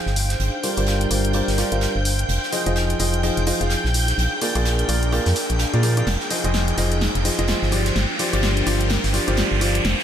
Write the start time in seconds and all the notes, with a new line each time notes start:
Already playing: D#4 G#4 C5 F5 G5 G6, riser
0.06 G1, snare
0.16 D4, closed hi-hat, open hi-hat
0.30 snare, closed hi-hat
0.40 G1, closed hi-hat
0.61 G3 F4 A#4 C5 D5, closed hi-hat, open hi-hat
0.77 G1 G3 F4 A#4 C5 D5, closed hi-hat
0.87 snare, closed hi-hat
1.01 closed hi-hat
1.11 G1 G3 F4 A#4 C5 D5, closed hi-hat, open hi-hat
1.25 closed hi-hat
1.33 G3 F4 A#4 C5 D5, closed hi-hat
1.48 G1, snare, open hi-hat
1.58 G3 F4 A#4 C5 D5, snare, closed hi-hat, open hi-hat
1.72 G1 G3 F4 A#4 C5 F5, closed hi-hat
1.81 snare, closed hi-hat
1.96 G1
2.05 closed hi-hat, open hi-hat
2.19 closed hi-hat
2.29 F1 D#4, closed hi-hat
2.43 snare
2.52 F3 F4 G#4 C5 D#5, closed hi-hat, open hi-hat
2.66 F1 F3 F4 G#4 C5 D#5, closed hi-hat
2.76 snare, closed hi-hat
2.90 closed hi-hat
2.99 F1 F3 F4 G#4 C5 D#5, closed hi-hat, open hi-hat
3.14 closed hi-hat
3.23 F3 F4 G#4 C5 D#5, closed hi-hat
3.37 F1, closed hi-hat
3.47 F3 F4 G#4 C5 D#5, closed hi-hat, open hi-hat
3.61 F1 F3 F4 G#4 C5 F5, closed hi-hat
3.70 snare, closed hi-hat
3.85 A#1, snare
3.94 D4, closed hi-hat, open hi-hat
4.08 snare, closed hi-hat
4.18 A#1, closed hi-hat
4.35 A#4
4.41 A#3 F4 G#4 A#4 D5, closed hi-hat, open hi-hat
4.55 A#1 A#3 F4 G#4 A#4 D5, closed hi-hat
4.65 snare, closed hi-hat
4.79 closed hi-hat
4.89 A#1 A#3 F4 G#4 A#4 D5, closed hi-hat, open hi-hat
5.03 closed hi-hat
5.12 A#3 F4 G#4 A#4 D5, closed hi-hat
5.26 F2, snare, open hi-hat
5.35 snare, closed hi-hat, open hi-hat
5.50 A#1, closed hi-hat
5.59 snare, closed hi-hat
5.74 A#2 A#3 F4 G#4 A#4 D5, closed hi-hat
5.83 F3 F4 G#4 A#4 D5, closed hi-hat, open hi-hat
5.97 F3 F4 G#4 A#4 D5, closed hi-hat
6.07 F1 D#4, snare, closed hi-hat
6.20 snare
6.30 F3 F4 G#4 C5 D#5, closed hi-hat, open hi-hat
6.44 F1 F3 F4 G#4 C5 D#5, closed hi-hat
6.51 C5, snare, closed hi-hat
6.68 closed hi-hat
6.78 F1 F3 F4 G#4 C5 D#5, closed hi-hat, open hi-hat
6.92 closed hi-hat
7.01 snare, closed hi-hat
7.15 F1, closed hi-hat
7.25 F3 F4 G#4 C5 D#5, closed hi-hat, open hi-hat
7.39 F1 F3 F4 G#4 C5 D#5, closed hi-hat
7.48 snare, closed hi-hat
7.62 G1, snare
7.72 F3 D4 F4 G4 C5 D5, closed hi-hat, open hi-hat
7.85 snare, closed hi-hat
7.90 A#4
7.96 G1, snare, closed hi-hat
8.19 F3 F4 G4 C5 D5, closed hi-hat, open hi-hat
8.33 G1 F3 F4 G4 C5 D5, closed hi-hat
8.43 snare, closed hi-hat
8.57 closed hi-hat
8.67 G1 F3 F4 G4 C5 D5, closed hi-hat, open hi-hat
8.81 closed hi-hat
8.89 snare, closed hi-hat
9.04 G1, snare, open hi-hat
9.14 F3 F4 G4 C5 D5, snare, closed hi-hat, open hi-hat
9.28 G1 F3 F4 G4 C5 D5, closed hi-hat
9.37 snare, closed hi-hat
9.52 G1
9.61 F3 F4 G4 C5 D5, closed hi-hat, open hi-hat
9.75 closed hi-hat
9.85 F1 D#4, snare, closed hi-hat
9.99 snare